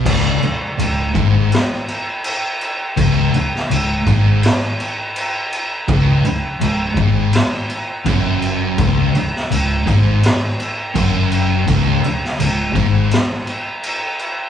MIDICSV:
0, 0, Header, 1, 6, 480
1, 0, Start_track
1, 0, Tempo, 728155
1, 38, Time_signature, 4, 2, 24, 8
1, 4837, Tempo, 720288
1, 9606, End_track
2, 0, Start_track
2, 0, Title_t, "Distorted electric guitar"
2, 0, Program_c, 0, 30
2, 35, Note_on_c, 0, 37, 96
2, 267, Note_off_c, 0, 37, 0
2, 521, Note_on_c, 0, 37, 71
2, 712, Note_off_c, 0, 37, 0
2, 754, Note_on_c, 0, 44, 94
2, 990, Note_off_c, 0, 44, 0
2, 1957, Note_on_c, 0, 37, 99
2, 2192, Note_off_c, 0, 37, 0
2, 2438, Note_on_c, 0, 37, 73
2, 2633, Note_off_c, 0, 37, 0
2, 2677, Note_on_c, 0, 44, 103
2, 2913, Note_off_c, 0, 44, 0
2, 3881, Note_on_c, 0, 37, 106
2, 4114, Note_off_c, 0, 37, 0
2, 4354, Note_on_c, 0, 37, 73
2, 4549, Note_off_c, 0, 37, 0
2, 4589, Note_on_c, 0, 44, 104
2, 4826, Note_off_c, 0, 44, 0
2, 5312, Note_on_c, 0, 42, 90
2, 5792, Note_off_c, 0, 42, 0
2, 5800, Note_on_c, 0, 37, 96
2, 6032, Note_off_c, 0, 37, 0
2, 6282, Note_on_c, 0, 37, 75
2, 6476, Note_off_c, 0, 37, 0
2, 6526, Note_on_c, 0, 44, 97
2, 6760, Note_off_c, 0, 44, 0
2, 7245, Note_on_c, 0, 42, 100
2, 7719, Note_off_c, 0, 42, 0
2, 7724, Note_on_c, 0, 37, 100
2, 7958, Note_off_c, 0, 37, 0
2, 8209, Note_on_c, 0, 37, 73
2, 8399, Note_off_c, 0, 37, 0
2, 8443, Note_on_c, 0, 44, 103
2, 8676, Note_off_c, 0, 44, 0
2, 9606, End_track
3, 0, Start_track
3, 0, Title_t, "Fingered electric bass"
3, 0, Program_c, 1, 33
3, 36, Note_on_c, 1, 25, 91
3, 260, Note_off_c, 1, 25, 0
3, 511, Note_on_c, 1, 25, 81
3, 738, Note_off_c, 1, 25, 0
3, 758, Note_on_c, 1, 32, 90
3, 982, Note_off_c, 1, 32, 0
3, 1961, Note_on_c, 1, 25, 93
3, 2185, Note_off_c, 1, 25, 0
3, 2440, Note_on_c, 1, 25, 76
3, 2665, Note_off_c, 1, 25, 0
3, 2680, Note_on_c, 1, 32, 97
3, 2905, Note_off_c, 1, 32, 0
3, 3878, Note_on_c, 1, 25, 94
3, 4102, Note_off_c, 1, 25, 0
3, 4360, Note_on_c, 1, 25, 83
3, 4583, Note_off_c, 1, 25, 0
3, 4595, Note_on_c, 1, 32, 93
3, 4819, Note_off_c, 1, 32, 0
3, 5317, Note_on_c, 1, 30, 91
3, 5775, Note_off_c, 1, 30, 0
3, 5798, Note_on_c, 1, 25, 97
3, 6025, Note_off_c, 1, 25, 0
3, 6285, Note_on_c, 1, 25, 77
3, 6509, Note_off_c, 1, 25, 0
3, 6525, Note_on_c, 1, 32, 97
3, 6749, Note_off_c, 1, 32, 0
3, 7249, Note_on_c, 1, 30, 94
3, 7701, Note_off_c, 1, 30, 0
3, 7730, Note_on_c, 1, 25, 97
3, 7951, Note_off_c, 1, 25, 0
3, 8209, Note_on_c, 1, 25, 75
3, 8430, Note_off_c, 1, 25, 0
3, 8445, Note_on_c, 1, 32, 92
3, 8668, Note_off_c, 1, 32, 0
3, 9606, End_track
4, 0, Start_track
4, 0, Title_t, "Muted distorted electric guitar strokes"
4, 275, Note_on_c, 9, 29, 58
4, 341, Note_off_c, 9, 29, 0
4, 2206, Note_on_c, 9, 29, 56
4, 2272, Note_off_c, 9, 29, 0
4, 4122, Note_on_c, 9, 29, 58
4, 4187, Note_off_c, 9, 29, 0
4, 6040, Note_on_c, 9, 29, 53
4, 6107, Note_off_c, 9, 29, 0
4, 7972, Note_on_c, 9, 29, 54
4, 8039, Note_off_c, 9, 29, 0
4, 9606, End_track
5, 0, Start_track
5, 0, Title_t, "Muted fingered electric bass strokes"
5, 4118, Note_on_c, 9, 29, 42
5, 4184, Note_off_c, 9, 29, 0
5, 7968, Note_on_c, 9, 29, 41
5, 8034, Note_off_c, 9, 29, 0
5, 9606, End_track
6, 0, Start_track
6, 0, Title_t, "Drums"
6, 37, Note_on_c, 9, 36, 104
6, 39, Note_on_c, 9, 49, 105
6, 39, Note_on_c, 9, 57, 72
6, 103, Note_off_c, 9, 36, 0
6, 105, Note_off_c, 9, 49, 0
6, 105, Note_off_c, 9, 57, 0
6, 280, Note_on_c, 9, 57, 52
6, 346, Note_off_c, 9, 57, 0
6, 523, Note_on_c, 9, 57, 75
6, 589, Note_off_c, 9, 57, 0
6, 759, Note_on_c, 9, 36, 99
6, 761, Note_on_c, 9, 57, 51
6, 825, Note_off_c, 9, 36, 0
6, 827, Note_off_c, 9, 57, 0
6, 1001, Note_on_c, 9, 57, 74
6, 1017, Note_on_c, 9, 38, 110
6, 1067, Note_off_c, 9, 57, 0
6, 1083, Note_off_c, 9, 38, 0
6, 1242, Note_on_c, 9, 57, 61
6, 1308, Note_off_c, 9, 57, 0
6, 1478, Note_on_c, 9, 57, 80
6, 1544, Note_off_c, 9, 57, 0
6, 1721, Note_on_c, 9, 57, 62
6, 1787, Note_off_c, 9, 57, 0
6, 1960, Note_on_c, 9, 36, 103
6, 1960, Note_on_c, 9, 57, 80
6, 2026, Note_off_c, 9, 36, 0
6, 2026, Note_off_c, 9, 57, 0
6, 2202, Note_on_c, 9, 57, 59
6, 2268, Note_off_c, 9, 57, 0
6, 2343, Note_on_c, 9, 38, 32
6, 2409, Note_off_c, 9, 38, 0
6, 2447, Note_on_c, 9, 57, 82
6, 2513, Note_off_c, 9, 57, 0
6, 2681, Note_on_c, 9, 36, 96
6, 2683, Note_on_c, 9, 57, 54
6, 2747, Note_off_c, 9, 36, 0
6, 2749, Note_off_c, 9, 57, 0
6, 2920, Note_on_c, 9, 57, 83
6, 2937, Note_on_c, 9, 38, 107
6, 2986, Note_off_c, 9, 57, 0
6, 3003, Note_off_c, 9, 38, 0
6, 3163, Note_on_c, 9, 57, 60
6, 3229, Note_off_c, 9, 57, 0
6, 3401, Note_on_c, 9, 57, 75
6, 3467, Note_off_c, 9, 57, 0
6, 3643, Note_on_c, 9, 57, 57
6, 3708, Note_off_c, 9, 57, 0
6, 3879, Note_on_c, 9, 36, 112
6, 3879, Note_on_c, 9, 57, 74
6, 3945, Note_off_c, 9, 36, 0
6, 3945, Note_off_c, 9, 57, 0
6, 4118, Note_on_c, 9, 57, 54
6, 4184, Note_off_c, 9, 57, 0
6, 4358, Note_on_c, 9, 57, 73
6, 4424, Note_off_c, 9, 57, 0
6, 4593, Note_on_c, 9, 57, 50
6, 4596, Note_on_c, 9, 36, 97
6, 4659, Note_off_c, 9, 57, 0
6, 4662, Note_off_c, 9, 36, 0
6, 4831, Note_on_c, 9, 57, 74
6, 4848, Note_on_c, 9, 38, 110
6, 4898, Note_off_c, 9, 57, 0
6, 4914, Note_off_c, 9, 38, 0
6, 5076, Note_on_c, 9, 57, 53
6, 5142, Note_off_c, 9, 57, 0
6, 5317, Note_on_c, 9, 57, 75
6, 5318, Note_on_c, 9, 36, 106
6, 5384, Note_off_c, 9, 57, 0
6, 5385, Note_off_c, 9, 36, 0
6, 5559, Note_on_c, 9, 57, 56
6, 5625, Note_off_c, 9, 57, 0
6, 5799, Note_on_c, 9, 57, 73
6, 5801, Note_on_c, 9, 36, 112
6, 5865, Note_off_c, 9, 57, 0
6, 5867, Note_off_c, 9, 36, 0
6, 6043, Note_on_c, 9, 57, 60
6, 6110, Note_off_c, 9, 57, 0
6, 6184, Note_on_c, 9, 38, 33
6, 6250, Note_off_c, 9, 38, 0
6, 6288, Note_on_c, 9, 57, 80
6, 6355, Note_off_c, 9, 57, 0
6, 6527, Note_on_c, 9, 36, 99
6, 6530, Note_on_c, 9, 57, 60
6, 6594, Note_off_c, 9, 36, 0
6, 6597, Note_off_c, 9, 57, 0
6, 6766, Note_on_c, 9, 57, 78
6, 6783, Note_on_c, 9, 38, 112
6, 6832, Note_off_c, 9, 57, 0
6, 6849, Note_off_c, 9, 38, 0
6, 7009, Note_on_c, 9, 57, 60
6, 7076, Note_off_c, 9, 57, 0
6, 7247, Note_on_c, 9, 57, 82
6, 7248, Note_on_c, 9, 36, 103
6, 7314, Note_off_c, 9, 57, 0
6, 7315, Note_off_c, 9, 36, 0
6, 7488, Note_on_c, 9, 57, 57
6, 7555, Note_off_c, 9, 57, 0
6, 7729, Note_on_c, 9, 36, 97
6, 7730, Note_on_c, 9, 57, 77
6, 7796, Note_off_c, 9, 36, 0
6, 7796, Note_off_c, 9, 57, 0
6, 7971, Note_on_c, 9, 57, 55
6, 8038, Note_off_c, 9, 57, 0
6, 8108, Note_on_c, 9, 38, 34
6, 8175, Note_off_c, 9, 38, 0
6, 8209, Note_on_c, 9, 57, 76
6, 8276, Note_off_c, 9, 57, 0
6, 8447, Note_on_c, 9, 36, 100
6, 8449, Note_on_c, 9, 57, 50
6, 8514, Note_off_c, 9, 36, 0
6, 8515, Note_off_c, 9, 57, 0
6, 8685, Note_on_c, 9, 57, 69
6, 8702, Note_on_c, 9, 38, 111
6, 8752, Note_off_c, 9, 57, 0
6, 8768, Note_off_c, 9, 38, 0
6, 8924, Note_on_c, 9, 57, 55
6, 8990, Note_off_c, 9, 57, 0
6, 9166, Note_on_c, 9, 57, 74
6, 9233, Note_off_c, 9, 57, 0
6, 9405, Note_on_c, 9, 57, 55
6, 9472, Note_off_c, 9, 57, 0
6, 9606, End_track
0, 0, End_of_file